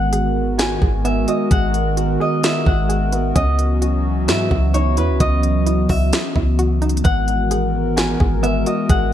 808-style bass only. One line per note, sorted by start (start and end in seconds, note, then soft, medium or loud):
0.00 0.78 G#1 loud
0.82 1.26 G#1 loud
1.51 2.17 G#1 loud
2.66 3.33 G#1 loud
3.36 4.30 C#2 loud
4.28 4.50 G#2 loud
4.51 4.99 C#2 loud
4.97 5.10 E2 medium
5.09 5.20 C#2 medium
5.20 5.87 C#2 loud
5.89 6.12 C#2 loud
6.36 7.02 C#2 loud
7.05 8.16 G#1 loud
8.20 8.65 G#1 loud
8.89 9.13 G#1 loud